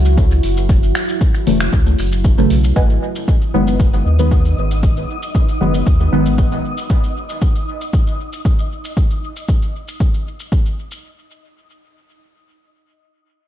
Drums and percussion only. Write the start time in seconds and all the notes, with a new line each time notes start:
0.05 shaker
0.17 kick, shaker
0.31 shaker
0.43 open hi-hat
0.57 shaker
0.69 kick, shaker
0.83 shaker
0.95 finger snap, open hi-hat
1.09 shaker
1.21 kick, shaker
1.35 shaker
1.47 open hi-hat
1.61 finger snap, shaker
1.73 kick, shaker
1.86 shaker
1.98 open hi-hat
2.12 shaker
2.24 kick, shaker
2.38 shaker
2.50 open hi-hat
2.64 shaker
2.76 kick, shaker
2.90 shaker
3.16 shaker
3.28 kick, shaker
3.42 shaker
3.67 shaker
3.80 kick, shaker
3.93 shaker
4.19 shaker
4.31 kick, shaker
4.45 shaker
4.71 shaker
4.83 kick, shaker
4.97 shaker
5.23 shaker
5.35 kick, shaker
5.48 shaker
5.74 shaker
5.87 kick, shaker
6.00 shaker
6.26 shaker
6.38 kick, shaker
6.52 shaker
6.78 shaker
6.90 kick, shaker
7.04 shaker
7.29 shaker
7.42 kick, shaker
7.55 shaker
7.81 shaker
7.93 kick, shaker
8.07 shaker
8.33 shaker
8.45 kick, shaker
8.59 shaker
8.85 shaker
8.97 kick, shaker
9.10 shaker
9.36 shaker
9.48 kick, shaker
9.62 shaker
9.88 shaker
10.00 kick, shaker
10.14 shaker
10.40 shaker
10.52 kick, shaker
10.66 shaker
10.91 shaker